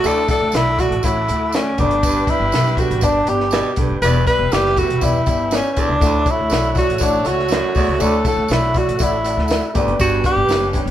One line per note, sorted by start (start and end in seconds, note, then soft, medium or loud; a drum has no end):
0.00 0.26 D2 loud
0.00 1.49 F#3 medium
0.00 0.17 A3 medium
0.00 1.49 E4 medium
0.00 1.49 A4 loud
0.00 1.74 A4 medium
0.00 1.74 E5 medium
0.00 1.74 F#5 medium
0.00 1.74 D6 medium
0.00 tambourine loud
0.04 0.25 D2 medium
0.04 0.75 D3 medium
0.04 0.17 E4 medium
0.04 0.17 F#4 medium
0.04 0.30 A4 loud
0.04 0.18 D5 loud
0.04 closed hi-hat medium
0.28 0.41 A3 medium
0.28 0.41 E4 medium
0.28 0.42 F#4 medium
0.28 0.57 A4 loud
0.28 0.42 D5 medium
0.28 kick loud
0.28 closed hi-hat medium
0.28 tambourine medium
0.41 0.52 D2 medium
0.52 0.86 B1 loud
0.52 0.66 A3 medium
0.52 0.66 E4 medium
0.52 0.81 E4 loud
0.52 0.66 F#4 medium
0.52 0.67 D5 medium
0.52 snare loud
0.52 closed hi-hat medium
0.52 tambourine medium
0.78 0.91 A3 medium
0.78 0.91 E4 medium
0.78 0.91 F#4 medium
0.78 1.06 F#4 medium
0.78 0.92 D5 medium
0.78 kick medium
0.78 closed hi-hat medium
0.78 tambourine medium
0.91 1.02 A1 medium
0.91 closed hi-hat medium
1.03 1.26 A1 loud
1.03 1.16 A3 loud
1.03 1.16 E4 medium
1.03 1.56 E4 loud
1.03 1.17 F#4 medium
1.03 1.17 C#5 loud
1.03 kick medium
1.03 closed hi-hat loud
1.03 tambourine medium
1.28 1.80 D2 medium
1.28 1.41 A3 medium
1.28 1.42 E4 medium
1.28 1.42 F#4 medium
1.28 1.43 A4 medium
1.28 closed hi-hat medium
1.28 tambourine soft
1.52 1.66 A3 medium
1.52 1.80 C#4 medium
1.52 1.67 E4 medium
1.52 1.67 F#4 medium
1.52 1.67 D5 medium
1.52 snare loud
1.52 closed hi-hat medium
1.52 tambourine loud
1.77 2.22 G1 loud
1.77 1.99 D2 medium
1.77 2.49 G2 medium
1.77 3.73 G3 medium
1.77 2.18 B3 medium
1.77 2.32 D4 loud
1.77 2.18 D4 medium
1.77 3.74 D4 medium
1.77 2.19 G4 medium
1.77 5.97 B4 medium
1.77 3.74 B4 medium
1.77 4.00 D5 medium
1.77 2.19 D5 medium
1.77 5.97 G5 medium
1.77 kick medium
1.77 closed hi-hat medium
1.77 tambourine medium
1.91 closed hi-hat soft
2.03 2.24 G2 medium
2.03 kick loud
2.03 closed hi-hat medium
2.03 tambourine loud
2.27 2.40 B3 medium
2.27 2.41 D4 medium
2.27 2.81 E4 loud
2.27 2.41 G4 medium
2.27 2.42 D5 medium
2.27 kick medium
2.27 closed hi-hat medium
2.27 tambourine medium
2.40 2.51 G1 loud
2.52 2.86 B1 loud
2.52 2.65 B3 medium
2.52 2.66 D4 medium
2.52 2.66 G4 medium
2.52 2.66 E5 medium
2.52 snare loud
2.52 closed hi-hat medium
2.52 tambourine medium
2.66 snare soft
2.77 2.90 B3 medium
2.77 2.91 D4 medium
2.77 3.05 F#4 medium
2.77 2.91 G4 medium
2.77 2.91 A4 medium
2.77 kick medium
2.77 closed hi-hat medium
2.77 tambourine medium
2.91 3.01 A1 medium
2.91 closed hi-hat medium
3.01 3.24 G1 loud
3.01 3.15 B3 loud
3.01 3.15 D4 medium
3.01 3.31 D4 medium
3.01 3.15 G4 medium
3.01 3.16 D5 loud
3.01 kick medium
3.01 closed hi-hat loud
3.01 tambourine medium
3.26 3.60 G1 medium
3.26 3.40 B3 medium
3.26 3.40 D4 medium
3.26 3.40 G4 medium
3.26 3.76 G4 medium
3.26 3.41 D5 medium
3.26 closed hi-hat medium
3.26 tambourine soft
3.40 snare soft
3.51 3.72 B2 medium
3.51 3.65 B3 medium
3.51 3.65 D4 medium
3.51 3.66 G4 medium
3.51 3.66 D5 medium
3.51 snare loud
3.51 closed hi-hat medium
3.51 tambourine medium
3.76 3.88 B1 loud
3.76 3.98 G2 medium
3.76 3.90 B3 medium
3.76 3.90 D4 medium
3.76 3.91 G4 medium
3.76 3.91 A4 medium
3.76 kick medium
3.76 closed hi-hat medium
3.76 tambourine medium
3.90 4.01 F#1 medium
4.01 4.24 E1 loud
4.01 4.23 E2 medium
4.01 4.74 E3 medium
4.01 5.73 G3 medium
4.01 4.15 B3 loud
4.01 5.72 E4 medium
4.01 4.15 E4 medium
4.01 4.16 G4 medium
4.01 4.25 B4 loud
4.01 5.73 B4 loud
4.01 4.16 D5 loud
4.01 9.71 E5 medium
4.01 closed hi-hat medium
4.01 tambourine loud
4.26 4.39 B3 medium
4.26 4.39 E4 medium
4.26 4.40 G4 medium
4.26 4.54 B4 loud
4.26 4.40 D5 medium
4.26 kick loud
4.26 closed hi-hat medium
4.26 tambourine soft
4.39 4.50 E1 loud
4.51 4.85 F#1 medium
4.51 4.64 B3 medium
4.51 4.64 E4 medium
4.51 4.65 G4 medium
4.51 4.80 G4 loud
4.51 4.65 D5 medium
4.51 snare loud
4.51 closed hi-hat medium
4.51 tambourine medium
4.66 snare soft
4.76 4.89 B3 medium
4.76 4.89 E4 medium
4.76 5.05 F#4 loud
4.76 4.90 G4 medium
4.76 4.90 A4 medium
4.76 kick medium
4.76 closed hi-hat medium
4.76 tambourine medium
4.89 5.00 E1 medium
4.89 closed hi-hat medium
5.00 5.24 E1 medium
5.00 5.14 B3 medium
5.00 5.14 E4 medium
5.00 5.56 E4 loud
5.00 5.14 G4 medium
5.00 5.15 D5 loud
5.00 kick medium
5.00 closed hi-hat medium
5.00 tambourine medium
5.25 5.59 G1 medium
5.25 5.38 B3 medium
5.25 5.39 E4 medium
5.25 5.39 G4 medium
5.25 5.40 D5 medium
5.25 kick medium
5.25 closed hi-hat medium
5.25 tambourine soft
5.50 5.63 B3 medium
5.50 5.64 E4 medium
5.50 5.64 G4 medium
5.50 5.65 D5 medium
5.50 snare loud
5.50 closed hi-hat medium
5.50 tambourine loud
5.54 5.72 C#4 medium
5.72 5.81 C#4 medium
5.76 5.88 A1 medium
5.76 5.97 E2 medium
5.76 5.89 B3 medium
5.76 5.89 E4 medium
5.76 5.90 G4 medium
5.76 5.90 A4 medium
5.76 kick medium
5.76 closed hi-hat medium
5.76 tambourine medium
5.80 6.32 D4 loud
5.89 6.00 C#2 medium
6.00 6.23 D2 loud
6.00 6.22 D2 medium
6.00 6.72 D3 medium
6.00 6.13 A3 medium
6.00 9.46 A3 medium
6.00 6.14 E4 medium
6.00 6.14 F#4 medium
6.00 9.46 F#4 medium
6.00 9.71 A4 medium
6.00 9.46 C#5 loud
6.00 6.14 D5 loud
6.00 9.71 F#5 medium
6.00 kick loud
6.00 closed hi-hat medium
6.00 tambourine loud
6.25 6.38 A3 medium
6.25 6.38 E4 medium
6.25 6.39 F#4 medium
6.25 6.39 C#5 medium
6.25 kick loud
6.25 closed hi-hat medium
6.25 tambourine medium
6.31 6.78 E4 loud
6.39 6.50 D2 medium
6.49 6.84 B1 medium
6.49 6.63 A3 medium
6.49 6.63 E4 medium
6.49 6.64 F#4 medium
6.49 6.64 D5 medium
6.49 snare loud
6.49 closed hi-hat medium
6.49 tambourine medium
6.74 6.88 A3 medium
6.74 6.88 E4 medium
6.74 6.88 F#4 medium
6.74 6.89 D5 medium
6.74 kick medium
6.74 closed hi-hat medium
6.74 tambourine medium
6.78 7.04 F#4 medium
6.89 7.00 A1 medium
6.89 closed hi-hat medium
6.98 7.23 A1 loud
6.98 7.13 A3 medium
6.98 7.13 E4 medium
6.98 7.13 F#4 medium
6.98 7.14 D5 loud
6.98 kick medium
6.98 closed hi-hat medium
6.98 tambourine loud
7.03 7.28 D4 medium
7.24 7.58 C#2 medium
7.24 7.38 A3 medium
7.24 7.38 E4 medium
7.24 7.38 F#4 medium
7.24 8.02 F#4 loud
7.24 7.39 D5 medium
7.24 closed hi-hat medium
7.24 tambourine medium
7.39 snare soft
7.48 7.71 F#2 medium
7.48 7.62 A3 medium
7.48 7.62 E4 medium
7.48 7.63 F#4 medium
7.48 7.63 D5 medium
7.48 closed hi-hat medium
7.48 tambourine medium
7.52 snare loud
7.74 7.86 D2 loud
7.74 7.95 E2 medium
7.74 7.87 A3 medium
7.74 7.88 E4 medium
7.74 7.88 F#4 medium
7.74 7.88 D5 medium
7.74 kick medium
7.74 open hi-hat medium
7.74 tambourine medium
7.88 7.99 C#2 medium
7.98 8.22 D2 loud
7.98 8.21 D2 medium
7.98 8.71 D3 medium
7.98 8.12 A3 medium
7.98 8.12 E4 medium
7.98 8.13 F#4 medium
7.98 8.25 A4 loud
7.98 8.13 D5 loud
7.98 closed hi-hat medium
7.98 tambourine loud
8.25 8.38 A3 medium
8.25 8.38 E4 medium
8.25 8.38 F#4 medium
8.25 8.38 A4 medium
8.25 8.54 A4 medium
8.25 kick loud
8.25 closed hi-hat medium
8.25 tambourine medium
8.36 8.48 D2 medium
8.48 8.82 B1 loud
8.48 8.63 A3 medium
8.48 8.63 E4 medium
8.48 8.63 F#4 medium
8.48 8.63 D5 medium
8.48 snare loud
8.48 closed hi-hat medium
8.48 tambourine medium
8.52 8.79 E4 loud
8.74 8.87 A3 medium
8.74 8.88 E4 medium
8.74 8.88 F#4 medium
8.74 9.05 F#4 medium
8.74 8.88 D5 medium
8.74 kick medium
8.74 closed hi-hat medium
8.74 tambourine medium
8.87 8.98 A1 medium
8.87 closed hi-hat medium
8.99 9.33 A1 loud
8.99 9.12 A3 loud
8.99 9.12 E4 medium
8.99 9.13 F#4 medium
8.99 9.13 D5 loud
8.99 kick medium
8.99 closed hi-hat medium
8.99 tambourine loud
9.03 9.76 E4 medium
9.23 9.37 A3 medium
9.23 9.37 E4 medium
9.23 9.37 F#4 medium
9.23 9.38 D5 medium
9.23 closed hi-hat medium
9.23 tambourine medium
9.37 9.59 D2 loud
9.37 snare soft
9.48 9.62 A3 medium
9.48 9.62 E4 medium
9.48 9.62 F#4 medium
9.48 9.63 D5 medium
9.48 snare loud
9.48 closed hi-hat medium
9.48 tambourine medium
9.73 9.86 G1 loud
9.73 9.95 D2 medium
9.73 10.45 G2 medium
9.73 10.91 G3 medium
9.73 9.80 A3 medium
9.73 10.14 D4 medium
9.73 10.91 D4 medium
9.73 10.15 G4 medium
9.73 10.91 B4 medium
9.73 10.91 B4 loud
9.73 10.91 D5 medium
9.73 10.15 D5 loud
9.73 10.91 G5 medium
9.73 kick loud
9.73 closed hi-hat medium
9.73 tambourine medium
9.79 10.17 B3 loud
9.86 9.98 F#1 medium
9.86 closed hi-hat soft
9.99 10.21 G1 loud
9.99 10.20 G2 medium
9.99 10.23 F#4 loud
9.99 kick loud
9.99 closed hi-hat medium
9.99 tambourine medium
10.23 10.36 B3 medium
10.23 10.37 D4 medium
10.23 10.37 G4 medium
10.23 10.71 G4 loud
10.23 10.37 D5 medium
10.23 kick loud
10.23 closed hi-hat medium
10.23 tambourine medium
10.36 10.47 G1 loud
10.48 10.82 F#1 medium
10.48 10.61 B3 medium
10.48 10.62 D4 medium
10.48 10.62 G4 medium
10.48 10.62 C#5 medium
10.48 snare loud
10.48 closed hi-hat medium
10.48 tambourine medium
10.73 10.86 B3 medium
10.73 10.87 D4 medium
10.73 10.87 G4 medium
10.73 10.87 C#5 medium
10.73 kick medium
10.73 closed hi-hat medium
10.73 tambourine medium
10.86 10.91 E1 medium
10.86 closed hi-hat medium